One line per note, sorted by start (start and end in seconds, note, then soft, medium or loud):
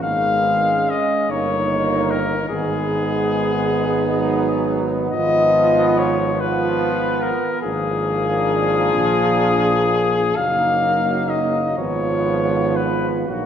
0.01 1.03 G#1 medium
0.01 1.02 D#3 medium
0.01 1.27 G#3 medium
0.01 0.67 B3 medium
0.01 0.91 F5 loud
0.68 1.30 C#4 medium
0.89 1.32 D#5 loud
1.28 2.47 G1 medium
1.28 2.51 D#3 medium
1.28 2.35 A#3 medium
1.28 2.36 D#4 medium
1.28 2.12 C#5 loud
2.10 2.48 A#4 loud
2.49 5.09 G#1 medium
2.49 4.21 G#3 medium
2.49 5.10 B3 medium
2.49 5.10 D#4 medium
2.49 4.79 G#4 loud
4.19 5.12 F#3 medium
5.12 7.33 G#1 medium
5.12 6.38 F3 loud
5.12 6.39 B3 loud
5.12 6.40 F4 medium
5.12 5.99 D#5 loud
5.98 6.42 C#5 loud
6.40 7.36 F3 loud
6.40 7.61 B3 medium
6.40 7.61 F4 medium
6.40 7.24 B4 loud
7.22 7.62 A#4 loud
7.62 8.94 G#1 medium
7.62 10.32 F3 loud
7.62 10.20 A#3 medium
7.62 10.20 D4 medium
7.62 10.38 G#4 loud
8.93 10.35 A#1 medium
10.36 11.74 F#1 medium
10.36 11.79 F#3 medium
10.36 11.75 A#3 medium
10.36 11.75 D#4 medium
10.36 11.31 F5 loud
11.29 11.77 D#5 loud
11.77 13.25 G#1 medium
11.77 13.27 F3 medium
11.77 13.28 B3 medium
11.77 13.28 F4 medium
11.77 12.77 C#5 loud
12.76 13.11 B4 loud
13.25 13.46 A#1 medium
13.25 13.46 F#3 medium
13.25 13.46 A#3 medium
13.25 13.46 D#4 medium
13.25 13.46 F#4 loud